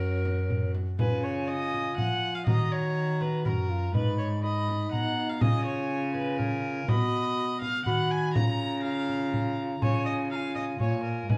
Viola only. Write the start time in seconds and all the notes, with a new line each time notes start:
Already playing: F#4
0.99 B4
1.24 C#5
1.48 D#5
1.97 F#5
2.34 F5
2.47 D#5
2.72 C#5
3.21 B4
3.45 A#4
3.95 B4
4.18 C#5
4.44 D#5
4.92 F#5
5.29 F5
5.41 D#5
5.65 C#5
6.15 B4
6.39 A#4
6.89 D#5
7.62 F5
7.85 F#5
8.11 G#5
8.34 A#5
8.83 F5
9.82 C#5
10.06 D#5
10.31 F5
10.55 D#5
10.80 C#5
11.04 A#4
11.30 B4